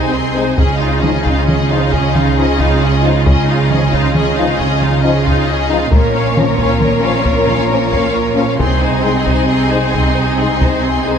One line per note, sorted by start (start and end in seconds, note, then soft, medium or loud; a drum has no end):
0.00 0.58 C2 medium
0.00 0.58 C3 medium
0.00 0.57 C4 medium
0.00 0.13 D#4 medium
0.00 0.58 D#4 medium
0.00 0.55 G#4 medium
0.00 0.13 C5 soft
0.00 0.56 D#5 medium
0.00 0.13 G#5 soft
0.13 0.35 C4 medium
0.13 0.35 G#4 medium
0.13 0.35 C6 medium
0.35 0.44 G#3 medium
0.35 0.58 D#4 soft
0.35 0.44 D#4 medium
0.35 0.57 C5 soft
0.35 0.58 G#5 soft
0.56 5.92 C#2 medium
0.56 5.91 C#3 medium
0.56 5.91 C#4 medium
0.56 0.79 C#4 medium
0.56 5.91 F4 medium
0.56 5.87 G#4 medium
0.56 0.78 G#4 medium
0.56 0.77 D#5 medium
0.56 5.88 D#5 medium
0.56 taiko medium
0.77 1.02 D#4 medium
0.77 1.02 F4 soft
0.77 1.01 F5 medium
1.01 1.11 F3 medium
1.01 1.24 C#4 medium
1.01 1.11 D#4 medium
1.01 1.24 G#4 medium
1.01 1.24 D#5 medium
1.01 taiko mid medium
1.23 1.46 D#4 medium
1.23 1.47 F4 medium
1.23 1.47 F5 medium
1.23 taiko medium
1.45 1.67 C#4 medium
1.45 1.68 G#4 medium
1.45 1.68 D#5 medium
1.45 taiko mid medium
1.68 1.78 F3 medium
1.68 1.91 D#4 soft
1.68 1.78 D#4 medium
1.68 1.92 F4 medium
1.68 1.92 F5 medium
1.91 2.14 C#4 medium
1.91 2.14 G#4 medium
1.91 2.14 D#5 medium
1.91 taiko medium
2.14 2.37 D#4 medium
2.14 2.36 F4 medium
2.14 2.37 F5 medium
2.14 taiko mid soft
2.36 2.45 F3 medium
2.36 2.58 C#4 medium
2.36 2.45 D#4 medium
2.36 2.57 G#4 soft
2.36 2.59 D#5 medium
2.59 2.81 D#4 medium
2.59 2.81 F4 medium
2.59 2.82 F5 medium
2.59 taiko medium
2.81 3.03 C#4 medium
2.81 3.04 G#4 medium
2.81 3.04 D#5 medium
3.03 3.11 F3 medium
3.03 3.25 D#4 soft
3.03 3.11 D#4 medium
3.03 3.26 F4 soft
3.03 3.26 F5 medium
3.25 3.46 C#4 medium
3.25 3.47 G#4 medium
3.25 3.47 D#5 medium
3.25 taiko loud
3.48 3.70 D#4 medium
3.48 3.71 F4 medium
3.48 3.71 F5 medium
3.70 3.79 F3 medium
3.70 3.92 C#4 medium
3.70 3.79 D#4 medium
3.70 3.92 G#4 medium
3.70 3.93 D#5 medium
3.70 taiko mid medium
3.92 4.14 D#4 medium
3.92 4.15 F4 medium
3.92 4.15 F5 medium
3.92 taiko medium
4.13 4.34 C#4 medium
4.13 4.36 G#4 medium
4.13 4.36 D#5 medium
4.13 taiko mid medium
4.36 4.46 F3 medium
4.36 4.59 D#4 medium
4.36 4.45 D#4 medium
4.36 4.59 F4 medium
4.36 4.59 F5 medium
4.57 4.81 C#4 medium
4.57 4.81 G#4 medium
4.57 4.80 D#5 medium
4.57 taiko medium
4.80 5.04 D#4 medium
4.80 5.03 F4 medium
4.80 5.03 F5 medium
4.80 taiko mid soft
5.01 5.11 F3 medium
5.01 5.24 C#4 medium
5.01 5.11 D#4 medium
5.01 5.24 G#4 medium
5.01 5.23 D#5 medium
5.26 5.48 D#4 medium
5.26 5.48 F4 medium
5.26 5.48 F5 medium
5.26 taiko medium
5.47 5.70 C#4 medium
5.47 5.70 G#4 medium
5.47 5.70 D#5 medium
5.69 5.78 F3 medium
5.69 5.91 D#4 medium
5.69 5.77 D#4 medium
5.69 5.92 F4 medium
5.69 5.92 F5 medium
5.91 8.55 A#1 medium
5.91 8.55 A#2 medium
5.91 6.12 A#3 medium
5.91 8.56 C#4 medium
5.91 8.55 F4 medium
5.91 8.60 A#4 medium
5.91 6.13 A#4 medium
5.91 8.60 C#5 medium
5.91 6.13 C#5 medium
5.91 taiko loud
6.13 6.35 C#4 medium
6.13 6.37 C#5 medium
6.13 6.37 F5 medium
6.36 6.44 F3 medium
6.36 6.58 A#3 medium
6.36 6.44 C#4 medium
6.36 6.59 A#4 medium
6.36 6.60 C#5 medium
6.36 taiko mid medium
6.58 6.80 C#4 medium
6.58 6.81 C#5 medium
6.58 taiko medium
6.63 6.83 F5 medium
6.79 7.01 A#3 medium
6.79 7.01 A#4 medium
6.79 7.02 C#5 medium
6.79 taiko mid medium
7.02 7.11 F3 medium
7.02 7.25 C#4 medium
7.02 7.11 C#4 medium
7.02 7.25 C#5 medium
7.02 7.25 F5 medium
7.23 7.47 A#3 medium
7.23 7.47 A#4 medium
7.23 7.47 C#5 medium
7.23 taiko medium
7.46 7.70 C#4 medium
7.46 7.70 C#5 medium
7.46 7.69 F5 medium
7.46 taiko mid soft
7.69 7.78 F3 medium
7.69 7.90 A#3 medium
7.69 7.78 C#4 medium
7.69 7.90 A#4 medium
7.69 7.91 C#5 medium
7.91 8.14 C#4 medium
7.91 8.15 C#5 medium
7.91 8.14 F5 medium
7.91 taiko medium
8.13 8.36 A#3 medium
8.13 8.37 A#4 medium
8.13 8.36 C#5 medium
8.35 8.43 F3 medium
8.35 8.43 C#4 medium
8.35 8.59 C#4 medium
8.35 8.59 C#5 medium
8.35 8.60 F5 medium
8.58 11.18 C2 medium
8.58 11.18 C3 medium
8.58 8.80 C4 medium
8.58 11.18 C4 medium
8.58 11.18 D#4 medium
8.58 8.80 G#4 medium
8.58 11.18 G#4 medium
8.58 11.18 D#5 medium
8.58 8.80 C6 medium
8.58 taiko medium
8.79 9.04 D#4 medium
8.79 9.04 C5 medium
8.79 9.03 G#5 medium
9.02 9.11 G#3 medium
9.02 9.26 C4 medium
9.02 9.11 D#4 medium
9.02 9.26 G#4 medium
9.02 9.27 C6 medium
9.24 9.48 D#4 medium
9.24 9.49 C5 medium
9.24 9.47 G#5 medium
9.24 taiko medium
9.48 9.70 C4 medium
9.48 9.69 G#4 medium
9.48 9.69 C6 medium
9.70 9.78 G#3 medium
9.70 9.93 D#4 medium
9.70 9.79 D#4 medium
9.70 9.93 C5 medium
9.70 9.93 G#5 medium
9.92 10.16 C4 medium
9.92 10.16 G#4 medium
9.92 10.15 C6 medium
9.92 taiko medium
10.15 10.38 D#4 medium
10.15 10.38 C5 medium
10.15 10.39 G#5 medium
10.37 10.45 G#3 medium
10.37 10.59 C4 soft
10.37 10.46 D#4 medium
10.37 10.60 G#4 medium
10.37 10.60 C6 medium
10.60 10.83 D#4 medium
10.60 10.84 C5 medium
10.60 10.84 G#5 medium
10.60 taiko medium
10.83 11.06 C4 medium
10.83 11.06 G#4 medium
10.83 11.05 C6 medium
11.04 11.12 G#3 medium
11.04 11.13 D#4 medium
11.04 11.18 D#4 soft
11.04 11.18 C5 soft
11.04 11.18 G#5 soft